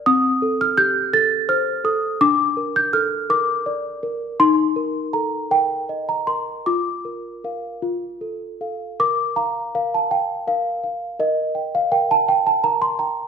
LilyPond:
\new Staff \with { instrumentName = "Celesta" } { \time 6/8 \key bes \major \tempo 4. = 55 << { ees'''8. f'''16 g'''8 a'''8 f'''8 ees'''8 | d'''8. g'''16 f'''8 d'''4. | c'''4 bes''8 g''8. bes''16 c'''8 | d'''2~ d'''8 r8 |
d'''8 bes''8 f''16 a''16 g''8 f''4 | ees''8. f''16 g''16 a''16 g''16 a''16 bes''16 c'''16 bes''8 | } \\ { c'8 a'8 g'8 a'8 c''8 a'8 | d'8 bes'8 a'8 bes'8 d''8 bes'8 | ees'8 bes'8 a'8 bes'8 ees''8 bes'8 | f'8 bes'8 <bes' f''>8 f'8 a'8 <a' f''>8 |
bes'8 f''8 bes'8 f''8 bes'8 f''8 | bes'8 g''8 bes'4 bes'8 g''8 | } >> }